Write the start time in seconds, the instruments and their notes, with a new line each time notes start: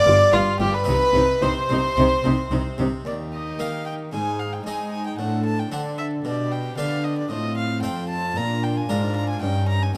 Already playing: harpsichord B3 F4, violin section D5 D6, violin D5
0.05 double bass section G1, harpsichord G2, cello section G2, viola section F4
0.33 double bass section G1, harpsichord G2, cello section G2, violin section F4 F5, viola section F4, violin F4
0.59 double bass section G1, harpsichord G2, cello section G2, viola section F4, violin section G4 G5, violin G4
0.73 violin section B4 B5, violin B4
0.84 double bass section C2, harpsichord C3 C4 D#4, viola section D#4, violin section B4 B5, violin B4
0.88 cello section C3
1.15 double bass section C2, harpsichord C3, cello section C3, viola section D#4
1.42 double bass section C2, harpsichord C3, cello section C3, viola section D#4, violin section C5 C6, violin C5
1.69 double bass section C2, harpsichord C3, cello section C3, viola section D#4
1.96 double bass section C2, harpsichord C3, cello section C3, viola section D#4
2.24 double bass section C2, harpsichord C3, cello section C3, viola section D#4
2.51 double bass section C2, harpsichord C3, cello section C3, viola section D#4
2.78 double bass section C2, harpsichord C3, cello section C3, viola section D#4
3.05 harpsichord D#2, cello section D#2, viola section D#4, violin section G4 A#4, violin D5
3.34 violin D#5
3.59 harpsichord D#3 A#3 D#4, cello section D#3, violin F5
3.86 violin G5
4.12 harpsichord G#2, cello section G#2, viola section D#4, violin section G#4 C5, violin G#5
4.40 violin F5
4.53 violin G5
4.66 cello section G#3, harpsichord G#3 C4 D#4, viola section D#4, violin section G#4 C5, violin G#5
4.92 violin G#5
5.06 violin G5
5.18 harpsichord A2, cello section A2, viola section D4, violin section A4 C5, violin F#5
5.46 violin A5
5.59 violin G5
5.72 harpsichord D3 C4 D4, cello section D3, viola section D4, violin section A4 C5, violin F#5
5.98 violin E5
6.25 harpsichord B2, cello section B2, viola section D4, violin section G4 B4, violin D5
6.52 violin G5
6.78 harpsichord D3 B3 D4 G4, cello section D3, violin F5
7.04 violin D#5
7.18 violin D5
7.30 harpsichord A2, cello section A2, viola section C4, violin section F4 C5, violin D#5
7.57 violin F5
7.83 harpsichord F2 C4 F4 C5, cello section F2, violin G5
8.09 violin A5
8.36 harpsichord A#2, cello section A#2, viola section D4, violin section F4 A#4, violin A#5
8.63 violin G5
8.77 violin G#5
8.89 harpsichord G#2 D4 F4 A#4, cello section G#2, viola section D4, violin section F4 A#4, violin A#5
9.16 violin A#5
9.29 violin G#5
9.42 harpsichord G2, cello section G2, viola section C#4, violin section D#4 A#4, violin G5
9.69 violin A#5
9.82 violin G#5